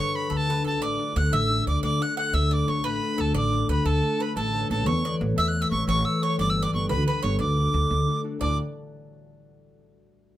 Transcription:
Already playing: D3 A3 G4 A4 B4 C#6
0.00 C#5
0.13 G4 A4 B4 B5
0.30 D2 D3 A4 B5
0.37 A5
0.47 D4 F#4 A4 B4
0.64 D2 D4 F#4 A4 A5
0.80 A1 A3 D5 D6
0.98 D4 F#4 A4
1.15 D2 D4 F#4 A4 F#5 F#6
1.31 A1 D3 E5 E6
1.50 D4 F#4 A4
1.66 D2 D4 F#4 A4 D5 D6
1.83 D2 A3 D5 D6
2.00 D4 F#4 A4 F#5 F#6
2.17 D4 F#4 A4 F#5 F#6
2.33 D2 A3 E5 E6
2.51 D4 F#4 A4 D5 D6
2.67 D2 D4 F#4 A4 C#5 C#6
2.84 A1 A3 B4 B5
3.01 D4 F#4 A4
3.17 D2 D4 F#4 A4 A5
3.34 A1 D3 D5 D6
3.51 D4 F#4 A4
3.68 D2 D4 F#4 A4 B4 B5
3.84 D2 A3 A4 A5
4.02 D4 F#4 A4
4.18 D4 F#4 A4 B4 B5
4.35 A1 A3 A4 A5
4.53 A4 B4 C#5
4.69 A1 A4 B4 C#5 A5
4.86 E2 E3 C#5 C#6
5.03 A4 B4 C#5 D5
5.20 A1 A4 B4 C#5
5.36 E2 A3 E5 E6
5.48 F#6
5.54 A4 B4 C#5
5.61 E5 E6
5.71 A1 A4 B4 C#5 C#6
5.87 A1 E3 C#5 C#6
6.05 A4 B4 C#5 E6
6.21 A4 B4 C#5 C#6
6.38 G1 G3 D5 D6
6.50 E6
6.56 G4 A4 B4
6.63 D5 D6
6.72 G1 G4 A4 B4 C#6
6.89 D2 D3 B4 B5
7.07 G4 A4 B4 B5
7.23 G1 G4 A4 B4 C#5 C#6
7.39 D2 D3 D5 D6
7.57 D4 F#4 A4
7.74 D2 D4 F#4 A4
7.90 D2 A3
8.06 D4 F#4 A4
8.24 D4 F#4 A4
8.39 D2 A2 A3 F#4 D5 A5 D6

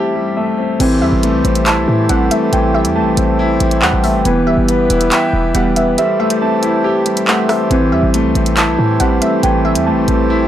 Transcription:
Already playing: G3 A3 C4 E4 G4 E5 A5
0.15 G3
0.37 A3 E5
0.58 C4
0.80 A1 E3 A3 C4 G4 C5, closed hi-hat, crash
1.02 E2 G3 E5
1.12 A1
1.23 A3, closed hi-hat
1.34 C2
1.45 A1 C4, closed hi-hat
1.55 closed hi-hat
1.66 E4 A5, clap, closed hi-hat
1.77 B1
1.88 A2 E3
2.09 A1 G3 C4 F#5, closed hi-hat
2.31 A3 E5, closed hi-hat
2.52 A1 E3 G5, closed hi-hat
2.74 G3 E5
2.85 E2, closed hi-hat
2.95 A3 A5
3.01 A1
3.17 A1 C4, closed hi-hat
3.39 E4
3.60 A1 E3, closed hi-hat
3.71 closed hi-hat
3.82 E2 G3 F#5 G5, clap
3.93 A1
4.04 A3 E5, open hi-hat
4.15 G1
4.25 E1 E3 B3 B4, closed hi-hat
4.47 D1 G3 E5
4.58 G1
4.68 B3, closed hi-hat
4.90 E1 E4, closed hi-hat
5.01 closed hi-hat
5.12 E5 G5, clap, closed hi-hat
5.33 E1 E3
5.55 E1 G3 B3 F#5, closed hi-hat
5.76 B3 E5, closed hi-hat
5.98 G3 A3 C5 E5, closed hi-hat
6.19 A3 E5
6.30 closed hi-hat
6.41 C4 A5
6.63 E4, closed hi-hat
6.84 G4
7.06 G3, closed hi-hat
7.17 closed hi-hat
7.28 A3 E5 F#5, clap
7.49 C4 E5, cross-stick, open hi-hat
7.71 A1 E3 C4, closed hi-hat
7.92 E2 G3 E5
8.03 A1
8.14 A3, closed hi-hat
8.25 C2
8.35 A1 C4, closed hi-hat
8.46 closed hi-hat
8.57 E4 A5, clap, closed hi-hat
8.68 B1
8.79 A2 E3
9.00 A1 G3 C4 F#5, closed hi-hat
9.22 A3 E5, closed hi-hat
9.43 A1 E3 G5, closed hi-hat
9.65 G3 E5
9.75 E2, closed hi-hat
9.86 A3 A5
9.92 A1
10.08 A1 C4, closed hi-hat
10.30 E4

